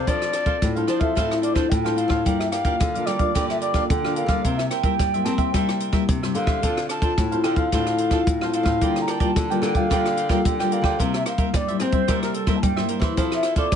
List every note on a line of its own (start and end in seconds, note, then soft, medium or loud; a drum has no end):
0.07 0.59 F3 soft
0.07 0.30 F3 medium
0.07 0.44 C4 medium
0.07 0.32 D4 medium
0.07 0.44 D4 medium
0.07 0.33 A4 medium
0.07 0.44 A4 soft
0.07 0.34 C5 medium
0.07 0.76 D5 loud
0.07 0.35 F5 medium
0.07 kick medium
0.07 closed hi-hat medium
0.22 cross-stick medium
0.22 closed hi-hat soft
0.33 0.45 D4 medium
0.33 0.45 A4 medium
0.33 0.46 C5 medium
0.33 0.46 F5 medium
0.33 cross-stick medium
0.33 closed hi-hat soft
0.46 0.70 C4 medium
0.46 0.56 D4 medium
0.46 0.70 D4 medium
0.46 0.56 A4 medium
0.46 0.71 A4 medium
0.46 0.56 C5 medium
0.46 0.56 F5 medium
0.46 kick medium
0.46 closed hi-hat soft
0.62 0.85 A2 medium
0.62 1.14 F3 medium
0.62 kick medium
0.62 cross-stick medium
0.62 closed hi-hat medium
0.75 0.98 C4 medium
0.75 0.99 D4 medium
0.75 0.99 A4 medium
0.75 0.87 A4 soft
0.75 0.87 C5 soft
0.75 0.88 F5 soft
0.75 closed hi-hat soft
0.87 1.12 F3 medium
0.87 1.01 D4 medium
0.87 1.00 A4 medium
0.87 1.01 C5 medium
0.87 0.99 C5 medium
0.87 0.98 F5 medium
0.87 cross-stick medium
0.87 closed hi-hat soft
1.00 1.11 C4 medium
1.00 1.11 D4 medium
1.00 1.11 A4 medium
1.00 1.15 A4 soft
1.00 1.14 C5 soft
1.00 1.41 E5 medium
1.00 1.14 F5 soft
1.00 kick medium
1.00 closed hi-hat soft
1.15 1.63 A2 medium
1.15 1.69 F3 medium
1.15 1.43 C4 medium
1.15 1.41 D4 medium
1.15 1.43 D4 soft
1.15 1.41 A4 medium
1.15 1.43 A4 medium
1.15 1.42 C5 medium
1.15 1.42 F5 medium
1.15 kick medium
1.15 cross-stick medium
1.15 closed hi-hat medium
1.31 cross-stick medium
1.31 closed hi-hat soft
1.42 1.54 D4 soft
1.42 1.54 A4 soft
1.42 1.55 C5 soft
1.42 1.55 D5 medium
1.42 1.55 F5 soft
1.42 closed hi-hat soft
1.54 1.80 C4 medium
1.54 1.65 D4 medium
1.54 1.80 D4 medium
1.54 1.65 A4 medium
1.54 1.80 A4 medium
1.54 1.71 C5 medium
1.54 1.66 C5 medium
1.54 1.66 F5 medium
1.54 kick medium
1.54 cross-stick medium
1.54 closed hi-hat soft
1.69 2.06 A2 medium
1.69 2.23 F3 medium
1.69 1.91 G5 medium
1.69 kick medium
1.69 closed hi-hat medium
1.85 2.22 C4 medium
1.85 2.22 D4 medium
1.85 2.22 A4 medium
1.85 1.96 A4 soft
1.85 1.96 C5 soft
1.85 1.97 F5 soft
1.85 cross-stick medium
1.85 closed hi-hat soft
1.91 1.98 G5 medium
1.96 2.10 D4 soft
1.96 2.10 A4 medium
1.96 2.09 C5 medium
1.96 2.40 F5 loud
1.96 2.08 F5 medium
1.96 closed hi-hat soft
2.08 2.21 A2 medium
2.08 2.24 A4 soft
2.08 2.24 C5 medium
2.08 2.23 F5 medium
2.08 kick medium
2.08 cross-stick medium
2.25 2.78 G2 soft
2.25 2.51 F3 medium
2.25 2.49 G3 medium
2.25 2.52 A#3 medium
2.25 2.52 D4 medium
2.25 2.50 G4 medium
2.25 2.51 A#4 medium
2.25 2.52 D5 medium
2.25 2.52 F5 medium
2.25 kick medium
2.25 closed hi-hat medium
2.39 2.50 E5 medium
2.39 cross-stick medium
2.39 closed hi-hat soft
2.50 2.63 G4 medium
2.50 2.64 A#4 medium
2.50 2.64 D5 soft
2.50 3.07 F5 medium
2.50 2.64 F5 medium
2.50 cross-stick medium
2.50 closed hi-hat soft
2.65 2.89 F3 medium
2.65 2.89 A#3 medium
2.65 2.90 D4 medium
2.65 2.75 G4 medium
2.65 2.75 A#4 medium
2.65 2.75 D5 medium
2.65 2.75 F5 medium
2.65 kick medium
2.65 closed hi-hat soft
2.80 3.33 D3 medium
2.80 3.04 D3 medium
2.80 kick medium
2.80 cross-stick medium
2.80 closed hi-hat medium
2.94 3.18 F3 medium
2.94 3.18 A#3 medium
2.94 3.18 D4 medium
2.94 3.06 A#4 soft
2.94 3.06 D5 soft
2.94 3.07 F5 soft
2.94 closed hi-hat soft
3.06 3.30 G3 medium
3.06 3.20 G4 medium
3.06 3.20 A#4 medium
3.06 3.48 D5 medium
3.06 3.19 D5 medium
3.06 3.18 F5 medium
3.06 cross-stick medium
3.06 closed hi-hat soft
3.19 3.30 F3 medium
3.19 3.30 A#3 medium
3.19 3.30 D4 medium
3.19 3.34 A#4 soft
3.19 3.33 D5 soft
3.19 3.33 F5 soft
3.19 kick medium
3.19 closed hi-hat soft
3.35 3.87 G2 medium
3.35 3.82 D3 medium
3.35 3.72 F3 medium
3.35 3.72 A#3 medium
3.35 3.73 D4 medium
3.35 3.59 G4 medium
3.35 3.60 A#4 medium
3.35 3.61 D5 medium
3.35 3.61 F5 medium
3.35 kick medium
3.35 cross-stick medium
3.35 closed hi-hat medium
3.49 3.60 E5 medium
3.49 cross-stick medium
3.49 closed hi-hat soft
3.60 3.73 G4 medium
3.60 3.73 A#4 soft
3.60 3.87 D5 medium
3.60 3.73 D5 medium
3.60 3.74 F5 medium
3.60 closed hi-hat soft
3.74 3.99 F3 medium
3.74 3.99 A#3 medium
3.74 3.99 D4 medium
3.74 3.84 G4 medium
3.74 3.84 A#4 medium
3.74 3.85 D5 medium
3.74 3.85 F5 medium
3.74 kick medium
3.74 cross-stick medium
3.74 closed hi-hat soft
3.88 4.25 D3 medium
3.88 4.42 D3 medium
3.88 4.15 G5 medium
3.88 kick medium
3.88 closed hi-hat medium
4.05 4.27 F3 medium
4.05 4.28 A#3 medium
4.05 4.28 D4 medium
4.05 4.15 A#4 soft
4.05 4.16 D5 soft
4.05 4.16 F5 medium
4.05 cross-stick medium
4.15 4.29 G4 soft
4.15 4.29 A#4 medium
4.15 4.28 D5 medium
4.15 4.59 F5 medium
4.15 4.28 F5 medium
4.15 closed hi-hat soft
4.26 4.40 D3 medium
4.26 4.81 G3 soft
4.26 4.81 A#3 medium
4.26 4.43 A#4 medium
4.26 4.43 D5 medium
4.26 4.42 F5 medium
4.26 kick medium
4.26 cross-stick medium
4.26 closed hi-hat soft
4.31 4.81 E4 medium
4.44 4.68 C3 medium
4.44 4.97 C3 medium
4.44 4.69 A#4 medium
4.44 4.70 C5 medium
4.44 4.71 E5 medium
4.44 kick medium
4.44 closed hi-hat medium
4.57 4.68 E5 medium
4.57 cross-stick medium
4.57 closed hi-hat soft
4.69 4.83 A#4 medium
4.69 4.83 C5 medium
4.69 4.84 E5 medium
4.69 5.26 G5 medium
4.69 cross-stick medium
4.69 closed hi-hat soft
4.83 5.08 G3 medium
4.83 5.08 A#3 medium
4.83 5.09 E4 medium
4.83 4.94 A#4 medium
4.83 4.94 C5 medium
4.83 4.94 E5 medium
4.83 kick medium
4.83 closed hi-hat soft
4.99 5.52 G2 soft
4.99 5.23 G3 medium
4.99 kick medium
4.99 cross-stick medium
4.99 closed hi-hat medium
5.14 5.51 G3 medium
5.14 5.51 A#3 medium
5.14 5.51 E4 medium
5.14 5.25 C5 soft
5.14 5.26 E5 soft
5.14 closed hi-hat soft
5.24 5.49 C4 medium
5.24 5.39 A#4 medium
5.24 5.39 C5 medium
5.24 5.37 E5 medium
5.24 5.36 A5 medium
5.24 cross-stick medium
5.24 closed hi-hat soft
5.37 5.53 C5 soft
5.37 5.52 E5 soft
5.37 6.03 G5 medium
5.37 kick medium
5.37 closed hi-hat soft
5.54 6.06 C3 medium
5.54 6.00 G3 medium
5.54 5.91 G3 medium
5.54 5.91 A#3 medium
5.54 5.91 E4 medium
5.54 5.79 A#4 medium
5.54 5.80 C5 medium
5.54 5.80 E5 medium
5.54 kick medium
5.54 cross-stick medium
5.54 closed hi-hat medium
5.69 cross-stick medium
5.69 closed hi-hat soft
5.80 5.91 A#4 soft
5.80 5.92 C5 soft
5.80 5.92 E5 medium
5.80 closed hi-hat soft
5.92 6.17 G3 medium
5.92 6.17 A#3 medium
5.92 6.17 E4 medium
5.92 6.03 A#4 medium
5.92 6.03 C5 medium
5.92 6.03 E5 medium
5.92 kick medium
5.92 cross-stick medium
5.92 closed hi-hat soft
6.09 6.61 G2 medium
6.09 6.33 C3 medium
6.09 kick medium
6.09 closed hi-hat medium
6.23 6.60 G3 medium
6.23 6.60 A#3 soft
6.23 6.60 E4 medium
6.23 6.34 C5 soft
6.23 6.35 E5 soft
6.23 cross-stick medium
6.23 closed hi-hat soft
6.34 6.60 D3 medium
6.34 6.48 A#4 soft
6.34 6.47 C5 medium
6.34 6.46 E5 medium
6.34 6.86 F5 loud
6.34 closed hi-hat soft
6.47 6.62 C5 medium
6.47 6.61 E5 medium
6.47 kick medium
6.47 cross-stick medium
6.62 6.87 D3 medium
6.62 7.15 D3 medium
6.62 7.00 C4 medium
6.62 6.88 D4 medium
6.62 7.00 F4 medium
6.62 6.89 A4 medium
6.62 7.01 A4 medium
6.62 6.89 C5 medium
6.62 6.90 F5 medium
6.62 kick medium
6.62 closed hi-hat medium
6.77 cross-stick medium
6.77 closed hi-hat soft
6.89 7.01 D4 soft
6.89 7.01 A4 medium
6.89 7.02 C5 medium
6.89 7.02 F5 medium
6.89 7.41 A5 loud
6.89 cross-stick medium
6.89 closed hi-hat medium
7.02 7.27 C4 medium
7.02 7.12 D4 medium
7.02 7.27 F4 medium
7.02 7.12 A4 medium
7.02 7.27 A4 medium
7.02 7.12 C5 medium
7.02 7.13 F5 medium
7.02 kick medium
7.02 closed hi-hat soft
7.18 7.41 A2 medium
7.18 7.70 A2 soft
7.18 kick medium
7.18 cross-stick medium
7.18 closed hi-hat medium
7.31 7.55 C4 medium
7.31 7.55 F4 medium
7.31 7.43 A4 soft
7.31 7.55 A4 medium
7.31 7.44 C5 soft
7.31 7.44 F5 soft
7.31 closed hi-hat soft
7.41 7.68 D3 medium
7.41 7.57 D4 medium
7.41 7.57 A4 medium
7.41 7.56 C5 medium
7.41 7.57 G5 medium
7.41 7.45 A5 medium
7.41 cross-stick medium
7.41 closed hi-hat soft
7.45 7.55 F5 medium
7.56 7.68 C4 medium
7.56 7.68 F4 medium
7.56 7.71 A4 soft
7.56 7.68 A4 medium
7.56 7.70 C5 soft
7.56 7.70 F5 medium
7.56 8.49 F5 loud
7.56 kick medium
7.56 closed hi-hat soft
7.72 8.19 A2 medium
7.72 8.25 D3 medium
7.72 8.09 C4 soft
7.72 7.97 D4 medium
7.72 8.10 F4 medium
7.72 7.98 A4 medium
7.72 8.10 A4 medium
7.72 7.98 C5 medium
7.72 7.99 F5 medium
7.72 kick medium
7.72 cross-stick medium
7.72 closed hi-hat medium
7.87 cross-stick medium
7.87 closed hi-hat soft
7.98 8.10 D4 soft
7.98 8.11 A4 soft
7.98 8.11 C5 soft
7.98 8.11 F5 medium
7.98 closed hi-hat soft
8.11 8.35 C4 medium
8.11 8.21 D4 medium
8.11 8.35 F4 medium
8.11 8.22 A4 medium
8.11 8.36 A4 medium
8.11 8.22 C5 medium
8.11 8.22 F5 medium
8.11 kick medium
8.11 cross-stick medium
8.11 closed hi-hat soft
8.27 8.62 A2 medium
8.27 8.79 A2 medium
8.27 kick medium
8.27 closed hi-hat medium
8.41 8.78 C4 medium
8.41 8.78 F4 medium
8.41 8.78 A4 medium
8.41 8.53 A4 soft
8.41 8.53 C5 soft
8.41 8.54 F5 medium
8.41 cross-stick medium
8.53 8.66 D4 medium
8.53 8.65 A4 medium
8.53 8.65 C5 medium
8.53 9.03 F5 loud
8.53 8.64 F5 medium
8.53 closed hi-hat soft
8.63 8.77 A2 medium
8.63 8.80 A4 medium
8.63 8.80 C5 medium
8.63 8.79 F5 medium
8.63 kick medium
8.63 cross-stick medium
8.63 closed hi-hat soft
8.81 9.05 D3 medium
8.81 9.34 D3 medium
8.81 9.18 G3 medium
8.81 9.18 A#3 medium
8.81 9.06 F4 medium
8.81 9.19 F4 medium
8.81 9.06 A#4 medium
8.81 9.07 D5 medium
8.81 9.08 G5 medium
8.81 kick medium
8.81 closed hi-hat medium
8.96 cross-stick medium
8.96 closed hi-hat soft
9.01 9.11 A#5 medium
9.07 9.19 F4 soft
9.07 9.19 A#4 medium
9.07 9.19 D5 medium
9.07 9.20 G5 medium
9.07 9.63 A5 medium
9.07 cross-stick medium
9.07 closed hi-hat soft
9.20 9.44 G3 medium
9.20 9.44 A#3 medium
9.20 9.30 F4 medium
9.20 9.45 F4 medium
9.20 9.30 A#4 medium
9.20 9.30 D5 medium
9.20 9.31 G5 medium
9.20 kick medium
9.20 closed hi-hat soft
9.36 9.88 D3 medium
9.36 9.59 D3 loud
9.36 kick medium
9.36 cross-stick medium
9.36 closed hi-hat medium
9.50 9.73 G3 medium
9.50 9.73 A#3 medium
9.50 9.73 F4 medium
9.50 9.61 A#4 soft
9.50 9.62 D5 soft
9.50 9.62 G5 soft
9.50 closed hi-hat soft
9.62 9.86 D3 medium
9.62 9.75 F4 medium
9.62 9.75 A#4 medium
9.62 9.74 D5 medium
9.62 9.73 G5 medium
9.62 9.78 G5 loud
9.62 cross-stick medium
9.62 closed hi-hat soft
9.74 9.85 G3 medium
9.74 9.85 A#3 medium
9.74 9.86 F4 medium
9.74 9.89 A#4 soft
9.74 9.89 D5 soft
9.74 10.48 F5 loud
9.74 9.88 G5 medium
9.74 kick medium
9.74 closed hi-hat soft
9.90 10.37 D3 medium
9.90 10.43 D3 medium
9.90 10.17 G3 soft
9.90 10.17 A#3 medium
9.90 10.15 F4 medium
9.90 10.17 F4 medium
9.90 10.16 A#4 medium
9.90 10.16 D5 medium
9.90 10.17 G5 medium
9.90 kick medium
9.90 cross-stick medium
9.90 closed hi-hat medium
10.06 cross-stick medium
10.06 closed hi-hat soft
10.16 10.28 F4 soft
10.16 10.28 A#4 medium
10.16 10.28 D5 medium
10.16 10.29 G5 medium
10.16 closed hi-hat soft
10.29 10.53 G3 medium
10.29 10.54 A#3 medium
10.29 10.39 F4 medium
10.29 10.54 F4 medium
10.29 10.39 A#4 medium
10.29 10.39 D5 medium
10.29 10.40 G5 medium
10.29 kick medium
10.29 cross-stick medium
10.29 closed hi-hat soft
10.45 10.97 D3 medium
10.45 10.80 D3 medium
10.45 10.74 G5 medium
10.45 kick medium
10.45 closed hi-hat medium
10.59 10.96 G3 medium
10.59 10.96 A#3 medium
10.59 10.96 F4 medium
10.59 10.70 A#4 soft
10.59 10.71 D5 soft
10.59 10.72 G5 medium
10.59 cross-stick medium
10.59 closed hi-hat soft
10.71 10.84 F4 soft
10.71 10.84 A#4 medium
10.71 10.83 D5 medium
10.71 11.18 F5 medium
10.71 10.83 G5 medium
10.71 closed hi-hat soft
10.82 10.95 D3 medium
10.82 10.98 D5 medium
10.82 10.97 G5 medium
10.82 kick medium
10.82 cross-stick medium
10.86 10.97 A#4 soft
10.99 11.51 C3 soft
10.99 11.23 C3 medium
10.99 11.36 G3 medium
10.99 11.36 A#3 medium
10.99 11.37 E4 medium
10.99 11.24 A#4 medium
10.99 11.25 C5 medium
10.99 11.26 E5 medium
10.99 kick medium
10.99 closed hi-hat medium
11.14 11.26 E5 medium
11.14 cross-stick medium
11.14 closed hi-hat soft
11.26 11.37 A#4 soft
11.26 11.37 C5 medium
11.26 11.38 E5 medium
11.26 11.57 F5 medium
11.26 cross-stick medium
11.26 closed hi-hat soft
11.38 11.63 G3 medium
11.38 11.63 A#3 medium
11.38 11.63 E4 medium
11.38 11.48 A#4 medium
11.38 11.48 C5 medium
11.38 11.49 E5 medium
11.38 kick medium
11.38 closed hi-hat soft
11.54 12.06 G2 medium
11.54 11.77 G3 loud
11.54 11.79 D5 medium
11.54 kick medium
11.54 cross-stick medium
11.54 closed hi-hat medium
11.68 11.92 G3 medium
11.68 11.92 A#3 medium
11.68 11.92 E4 medium
11.68 11.79 C5 soft
11.68 11.80 E5 medium
11.68 closed hi-hat soft
11.79 12.04 C4 medium
11.79 11.93 A#4 medium
11.79 12.19 C5 medium
11.79 11.93 C5 medium
11.79 11.91 E5 medium
11.79 cross-stick medium
11.79 closed hi-hat soft
11.92 12.04 G3 medium
11.92 12.04 A#3 medium
11.92 12.04 E4 medium
11.92 12.07 C5 soft
11.92 12.06 E5 soft
11.92 kick medium
11.92 closed hi-hat soft
12.08 12.61 C3 medium
12.08 12.55 G3 loud
12.08 12.35 G3 medium
12.08 12.35 A#3 medium
12.08 12.35 E4 medium
12.08 12.32 A#4 medium
12.08 12.34 C5 medium
12.08 12.34 E5 medium
12.08 kick medium
12.08 cross-stick medium
12.08 closed hi-hat medium
12.23 12.35 A#4 medium
12.23 cross-stick medium
12.23 closed hi-hat soft
12.34 12.57 A4 medium
12.34 12.45 A#4 soft
12.34 12.46 C5 medium
12.34 12.47 E5 medium
12.34 closed hi-hat soft
12.47 12.71 G3 medium
12.47 12.71 A#3 medium
12.47 12.72 E4 medium
12.47 12.57 A#4 medium
12.47 12.57 C5 medium
12.47 12.58 E5 medium
12.47 kick medium
12.47 cross-stick medium
12.47 closed hi-hat soft
12.56 12.64 A5 medium
12.62 13.15 G2 medium
12.62 12.98 G3 loud
12.62 12.90 G5 medium
12.62 kick medium
12.62 closed hi-hat medium
12.76 13.14 G3 medium
12.76 13.14 A#3 medium
12.76 13.14 E4 medium
12.76 12.89 C5 soft
12.76 12.89 E5 medium
12.76 cross-stick medium
12.88 13.02 A#4 medium
12.88 13.02 C5 medium
12.88 13.00 E5 medium
12.88 closed hi-hat soft
12.99 13.13 E3 medium
12.99 13.15 E5 medium
12.99 kick medium
12.99 cross-stick medium
12.99 closed hi-hat soft
13.04 13.16 C5 medium
13.17 13.41 F3 medium
13.17 13.70 F3 medium
13.17 13.44 C4 soft
13.17 13.42 E4 medium
13.17 13.44 E4 soft
13.17 13.43 A4 medium
13.17 13.44 A4 medium
13.17 13.43 C5 medium
13.17 13.44 F5 medium
13.17 kick medium
13.17 closed hi-hat medium
13.32 13.56 E5 medium
13.32 cross-stick medium
13.32 closed hi-hat soft
13.43 13.55 E4 medium
13.43 13.56 A4 medium
13.43 13.56 C5 medium
13.43 13.56 F5 medium
13.43 cross-stick medium
13.43 closed hi-hat soft
13.56 13.76 C4 medium
13.56 13.66 E4 medium
13.56 13.76 E4 medium
13.56 13.67 A4 medium
13.56 13.76 A4 medium
13.56 13.67 C5 medium
13.56 13.76 D5 loud
13.56 13.67 F5 medium
13.56 kick medium
13.56 closed hi-hat soft
13.72 13.76 C3 medium
13.72 kick medium
13.72 cross-stick medium
13.72 closed hi-hat medium